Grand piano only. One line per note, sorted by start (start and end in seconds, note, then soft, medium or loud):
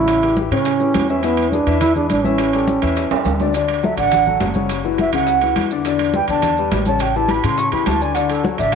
0.00 0.17 C#3 medium
0.00 0.17 C#4 medium
0.00 0.18 C#5 medium
0.23 0.46 E3 medium
0.23 0.46 E4 medium
0.23 0.47 G4 medium
0.52 0.75 C#3 medium
0.52 0.75 C#4 medium
0.52 0.75 C#5 medium
0.80 1.04 E3 medium
0.80 1.04 E4 medium
0.80 1.04 G4 medium
1.10 1.21 E3 medium
1.10 1.21 E4 medium
1.10 1.22 E5 medium
1.23 1.47 E3 medium
1.23 1.47 E4 medium
1.23 1.48 E5 medium
1.53 1.65 G#3 medium
1.53 1.65 G#4 medium
1.53 1.65 B4 medium
1.67 1.91 E3 medium
1.67 1.91 E4 medium
1.67 1.91 E5 medium
1.96 2.20 G#3 medium
1.96 2.20 G#4 medium
1.96 2.20 B4 medium
2.24 2.48 E3 medium
2.24 2.48 E4 medium
2.24 2.48 E5 medium
2.54 2.77 G3 medium
2.54 2.78 G4 medium
2.54 2.78 A4 medium
2.82 3.06 E3 medium
2.82 3.06 E4 medium
2.82 3.06 E5 medium
3.11 3.35 G3 medium
3.11 3.35 G4 medium
3.11 3.35 A4 medium
3.40 3.52 D3 medium
3.40 3.52 D4 medium
3.40 3.52 D5 medium
3.55 3.78 D3 medium
3.55 3.78 D4 medium
3.55 3.79 D5 medium
3.83 3.95 F#3 medium
3.83 3.95 F#4 medium
3.83 3.96 A4 medium
3.98 4.21 D3 medium
3.98 4.22 D4 medium
3.98 4.22 D5 medium
4.26 4.50 F#3 medium
4.26 4.50 F#4 medium
4.26 4.50 A4 medium
4.55 4.79 C#3 medium
4.55 4.79 C#4 medium
4.55 4.79 C#5 medium
4.84 5.08 E3 medium
4.84 5.08 E4 medium
4.84 5.08 F#4 medium
5.13 5.37 C#3 medium
5.13 5.37 C#4 medium
5.13 5.37 C#5 medium
5.43 5.66 E3 medium
5.43 5.66 E4 medium
5.43 5.66 F#4 medium
5.72 5.83 D3 medium
5.72 5.83 D4 medium
5.72 5.83 D5 medium
5.86 6.09 D3 medium
5.86 6.10 D4 medium
5.86 6.10 D5 medium
6.15 6.27 G3 medium
6.15 6.27 G4 medium
6.15 6.27 B4 medium
6.29 6.53 D3 medium
6.29 6.53 D4 medium
6.29 6.53 D5 medium
6.59 6.82 G3 medium
6.59 6.82 G4 medium
6.59 6.82 B4 medium
6.87 7.10 C#3 medium
6.87 7.11 C#4 medium
6.87 7.11 C#5 medium
7.16 7.39 E3 medium
7.16 7.39 E4 medium
7.16 7.39 G4 medium
7.44 7.67 C#3 medium
7.44 7.67 C#4 medium
7.44 7.67 C#5 medium
7.72 7.96 E3 medium
7.72 7.96 E4 medium
7.72 7.96 G4 medium
8.01 8.13 D3 medium
8.01 8.13 D4 medium
8.01 8.13 D5 medium
8.16 8.39 D3 medium
8.16 8.39 D4 medium
8.16 8.40 D5 medium
8.44 8.56 F#3 medium
8.44 8.56 F#4 medium
8.44 8.56 A4 medium
8.59 8.75 D3 medium
8.59 8.75 D4 medium
8.59 8.75 D5 medium